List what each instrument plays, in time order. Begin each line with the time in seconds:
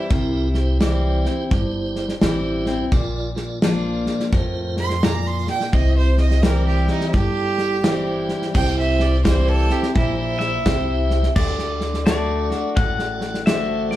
Already playing: fiddle E4
0.09 upright bass C2, steel-string acoustic guitar C3, tonewheel organ E4 G4 A#4, kick, snare
0.54 tonewheel organ E4 G4 C5, snare
0.79 steel-string acoustic guitar E3 G3 C4 E4, tonewheel organ E4 G4 C5, snare, hi-hat pedal
1.25 steel-string acoustic guitar C4 E4, snare
1.50 upright bass G1, steel-string acoustic guitar G2, tonewheel organ E4 G4 C5, kick, snare
1.95 snare
2.09 snare
2.21 upright bass A1, steel-string acoustic guitar E3 G3 C4 E4, tonewheel organ E4 G4 C5, snare, hi-hat pedal
2.66 steel-string acoustic guitar C4 E4, snare
2.91 upright bass A#1, steel-string acoustic guitar A#2, tonewheel organ F4 A#4 D5, kick, snare
3.35 tonewheel organ F4 A#4 D5, snare
3.61 steel-string acoustic guitar F3 A#3 D4 F4, tonewheel organ F4 A#4 D5, snare, hi-hat pedal
4.06 snare
4.20 snare
4.32 upright bass F2, steel-string acoustic guitar A2, tonewheel organ F4 A#4 C5, kick, snare
4.77 fiddle C6, snare
4.90 snare
5.02 steel-string acoustic guitar A#2, tonewheel organ F4 A#4 D5, fiddle A#5, snare, hi-hat pedal
5.27 fiddle C6
5.47 fiddle G5, snare
5.60 snare
5.72 upright bass C2, steel-string acoustic guitar C3, tonewheel organ E4 G4 C5, fiddle D#5, kick, snare
5.97 fiddle C5
6.17 tonewheel organ E4 G4 C5, fiddle D#5, snare
6.31 snare
6.43 steel-string acoustic guitar E3 G3 C4 E4, tonewheel organ E4 G4 C5, fiddle A#4, snare, hi-hat pedal
6.67 fiddle G4
6.87 fiddle D#4, snare
7.01 snare
7.13 upright bass G1, steel-string acoustic guitar G2, tonewheel organ E4 G4 A4, fiddle G4, kick, snare
7.58 snare
7.83 steel-string acoustic guitar E3 G3 C4 E4, tonewheel organ E4 G4 C5, snare, hi-hat pedal
8.29 snare
8.42 snare
8.54 upright bass C2, steel-string acoustic guitar C3, tonewheel organ E4 G4 C5, fiddle G5, kick, snare, crash
8.79 fiddle E5
8.99 fiddle D5, snare
9.24 steel-string acoustic guitar E3 G3 C4 E4, tonewheel organ E4 G4 C5, fiddle C5, kick, snare, hi-hat pedal
9.49 fiddle A4
9.69 steel-string acoustic guitar C4 E4, fiddle G4, snare
9.83 snare
9.95 upright bass A#1, steel-string acoustic guitar A#2, tonewheel organ E4 G4 C5, fiddle E4, kick, snare
10.19 fiddle E4
10.39 pedal steel guitar E5, snare
10.65 upright bass C2, steel-string acoustic guitar C3, tonewheel organ E4 G4 C5, kick, snare, hi-hat pedal
11.10 snare
11.23 snare
11.36 upright bass D2, steel-string acoustic guitar D3, tonewheel organ F#4 A4 D5, pedal steel guitar D5, kick, snare, crash
11.59 snare
11.81 snare
11.94 snare
12.06 steel-string acoustic guitar D3 A3 D4 F#4, tonewheel organ F#4 A4 E5, pedal steel guitar D5, snare, hi-hat pedal
12.50 steel-string acoustic guitar D4 F#4, snare
12.76 upright bass A1, steel-string acoustic guitar A2, tonewheel organ F#4 A4 D5, pedal steel guitar F#5, kick, snare
12.99 snare
13.21 snare
13.34 snare
13.46 steel-string acoustic guitar D3 A3 D4 F#4, tonewheel organ F#4 A4 C5, pedal steel guitar E5, snare, hi-hat pedal
13.91 pedal steel guitar D5, snare